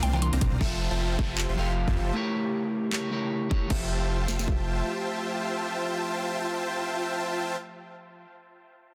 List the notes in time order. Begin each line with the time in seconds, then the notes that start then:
Already playing: D3 A#3 C4 F4
0.03 C2 C4 C5 D5 F5 G5 C6, closed hi-hat, high tom
0.11 C3 C4 D4 F4 A#4 G5, mid tom
0.22 C6, closed hi-hat, mid tom
0.33 C2 C4 C5 D5 F5 A#5, closed hi-hat
0.41 C2 C4 C5 D5 F5 A#5, kick, closed hi-hat, mid tom
0.52 mid tom
0.59 F1 F3 F4 G4 A4 C5 E5 G5 A5, kick, downlifter
0.91 F1 F4 C5 E5 G5 A5
1.19 F1 F4 C5 E5 G5 A5, kick
1.38 clap
1.49 F1 F4 C5 E5 G5 C6
1.55 F1 F3 F4 G4 A4 C5 E5 G5 C6
1.59 F5
1.87 F2 F4 C5 E5 G5 A5, kick
1.96 F1 F4 C5 E5 G5 A5
2.14 C#3 A3 E4 G4 A#4
2.18 C#5
2.92 A3 E4 G4 A#4 C#5, clap
3.11 A3 E4 G4 A#4 C#5
3.50 A3 E4 G4 A#4 C#5, kick
3.67 F1 F3 A3 F4 G4 C5 E5 G5 A5, kick, crash
3.72 A4 E5
4.28 snare
4.39 snare
4.48 kick